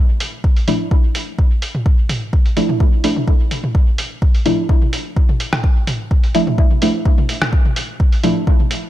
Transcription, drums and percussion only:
0.20 open hi-hat
0.44 kick
0.57 open hi-hat
0.68 open hi-hat, mid tom
0.91 kick
1.15 open hi-hat
1.39 kick
1.62 open hi-hat
1.75 mid tom
1.86 kick
2.09 open hi-hat, mid tom
2.33 kick
2.46 open hi-hat
2.57 open hi-hat
2.69 mid tom
2.80 kick
3.04 open hi-hat
3.16 high tom
3.28 kick
3.51 open hi-hat, high tom
3.64 mid tom
3.75 kick
3.98 open hi-hat
4.22 kick
4.35 open hi-hat
4.46 open hi-hat, mid tom
4.69 kick
4.82 high tom
4.93 open hi-hat
5.16 kick
5.29 high tom
5.40 open hi-hat
5.53 cross-stick, mid tom
5.64 kick
5.87 open hi-hat, mid tom
6.11 kick
6.24 open hi-hat
6.35 open hi-hat
6.47 mid tom
6.58 kick
6.71 high tom
6.82 open hi-hat
7.05 kick
7.18 high tom
7.29 open hi-hat
7.42 cross-stick, mid tom
7.53 kick
7.65 high tom
7.76 open hi-hat
8.00 kick
8.12 open hi-hat
8.23 open hi-hat, mid tom
8.47 kick
8.60 high tom
8.71 open hi-hat

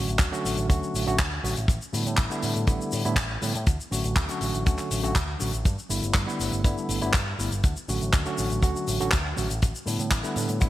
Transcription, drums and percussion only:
0.08 closed hi-hat, shaker
0.19 kick, clap, closed hi-hat, shaker
0.34 shaker
0.46 open hi-hat, shaker
0.58 closed hi-hat, shaker
0.70 kick, closed hi-hat, shaker
0.83 shaker
0.95 open hi-hat, shaker
1.08 closed hi-hat, shaker
1.19 kick, clap, closed hi-hat, shaker
1.45 open hi-hat, shaker
1.56 closed hi-hat, shaker
1.68 kick, closed hi-hat, shaker
1.82 shaker
1.94 open hi-hat, shaker
2.07 closed hi-hat, shaker
2.17 kick, clap, closed hi-hat, shaker
2.31 shaker
2.43 open hi-hat, shaker
2.55 closed hi-hat, shaker
2.67 kick, closed hi-hat, shaker
2.81 shaker
2.92 open hi-hat, shaker
3.05 closed hi-hat, shaker
3.16 kick, clap, closed hi-hat, shaker
3.42 open hi-hat, shaker
3.55 closed hi-hat, shaker
3.67 kick, closed hi-hat, shaker
3.80 shaker
3.92 open hi-hat, shaker
4.04 closed hi-hat, shaker
4.16 kick, clap, closed hi-hat, shaker
4.29 closed hi-hat, shaker
4.41 open hi-hat, shaker
4.54 closed hi-hat, shaker
4.66 kick, closed hi-hat, shaker
4.78 clap, closed hi-hat, shaker
4.91 open hi-hat, shaker
5.04 closed hi-hat, shaker
5.15 kick, clap, closed hi-hat, shaker
5.40 open hi-hat, shaker
5.54 closed hi-hat, shaker
5.65 kick, closed hi-hat, shaker
5.79 shaker
5.90 open hi-hat, shaker
6.03 closed hi-hat, shaker
6.14 kick, clap, closed hi-hat, shaker
6.29 shaker
6.40 open hi-hat, shaker
6.52 closed hi-hat, shaker
6.64 kick, closed hi-hat, shaker
6.78 shaker
6.89 open hi-hat, shaker
7.02 closed hi-hat, shaker
7.13 kick, clap, closed hi-hat, shaker
7.39 open hi-hat, shaker
7.52 closed hi-hat, shaker
7.64 kick, closed hi-hat, shaker
7.76 shaker
7.89 open hi-hat, shaker
8.01 closed hi-hat, shaker
8.13 kick, clap, closed hi-hat, shaker
8.26 shaker
8.38 open hi-hat, shaker
8.50 closed hi-hat, shaker
8.63 kick, closed hi-hat, shaker
8.76 shaker
8.88 open hi-hat, shaker
9.00 closed hi-hat, shaker
9.11 kick, clap, closed hi-hat, shaker
9.38 open hi-hat, shaker
9.50 closed hi-hat, shaker
9.62 kick, closed hi-hat, shaker
9.75 shaker
9.87 open hi-hat, shaker
9.99 closed hi-hat, shaker
10.11 kick, clap, closed hi-hat, shaker
10.24 shaker
10.36 open hi-hat, shaker
10.48 closed hi-hat, shaker
10.61 kick, closed hi-hat, shaker

